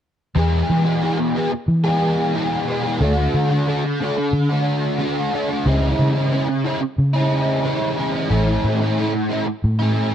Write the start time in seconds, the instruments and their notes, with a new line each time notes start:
0.35 overdriven electric guitar E2 B2 E3 G#3 B3 G#4, fingered electric bass E2
0.70 fingered electric bass E3
0.84 overdriven electric guitar E3 G#3 B3 G#4
1.01 overdriven electric guitar E2 B2 E3 G#3 B3 G#4
1.19 muted overdriven electric guitar stroke
1.35 overdriven electric guitar E3 G#3 B3 G#4
1.52 muted overdriven electric guitar stroke
1.68 fingered electric bass E3
1.84 overdriven electric guitar E3 G#3 B3 G#4
2.34 overdriven electric guitar E2 B2 E3 G#3 B3 G#4
2.67 overdriven electric guitar E3 G#3 B3 G#4
2.83 overdriven electric guitar E3 G#3 B3 G#4
3.00 fingered electric bass D2, overdriven electric guitar D3 A3 D4 F#4
3.34 fingered electric bass D3
3.50 overdriven electric guitar A3 D4 F#4
3.67 overdriven electric guitar D3 A3 D4 F#4
3.85 muted overdriven electric guitar stroke
4.01 overdriven electric guitar D3 A3 D4 F#4
4.18 muted overdriven electric guitar stroke
4.33 fingered electric bass D3
4.49 overdriven electric guitar A3 D4 F#4
4.98 overdriven electric guitar D3 A3 D4 F#4
5.32 overdriven electric guitar D3 A3 D4 F#4
5.48 overdriven electric guitar A3 D4 F#4
5.65 fingered electric bass C#2, overdriven electric guitar C#3 E3 G#3 C#4 E4
5.99 fingered electric bass C#3
6.15 overdriven electric guitar G#3 C#4 E4
6.31 overdriven electric guitar C#3 E3 G#3 C#4 E4
6.48 muted overdriven electric guitar stroke
6.64 overdriven electric guitar E3 G#3 C#4 E4
6.81 muted overdriven electric guitar stroke
6.98 fingered electric bass C#3
7.13 overdriven electric guitar G#3 C#4 E4
7.63 overdriven electric guitar C#3 E3 G#3 C#4 E4
7.97 overdriven electric guitar E3 G#3 C#4 E4
8.14 overdriven electric guitar G#3 C#4 E4
8.29 fingered electric bass A1, overdriven electric guitar A2 E3 A3 C#4 E4
8.64 fingered electric bass A2
8.80 overdriven electric guitar A3 C#4 E4
8.96 overdriven electric guitar A2 E3 A3 C#4 E4
9.14 muted overdriven electric guitar stroke
9.29 overdriven electric guitar E3 A3 C#4 E4
9.46 muted overdriven electric guitar stroke
9.64 fingered electric bass A2
9.79 overdriven electric guitar A3 C#4 E4